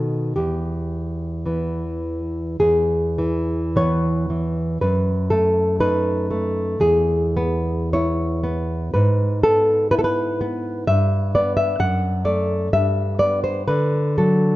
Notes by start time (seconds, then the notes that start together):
Already playing: B2 D#3 B3 A4
0.36 E2 G4
1.46 E3 B3
2.60 E2 G#4
3.18 E3
3.76 E3 B3 C#5
4.30 E3
4.81 F#2 B4
5.30 A3 A4
5.80 A3 D#4 B4
6.31 A3
6.80 E2 G#4
7.37 B3
7.93 B3 E4 C#5
8.44 B3
8.94 G#2 B4
9.43 B3 A4
9.91 B3 E4 B4
9.99 A4
10.04 B4
10.41 B3
10.87 G2 E5
11.35 B3 D5
11.57 E5
11.79 F#2 F#5
12.25 A3 D5
12.73 G2 E5
13.19 B3 D5
13.44 C5
13.68 D3 B4
14.18 F#3 A4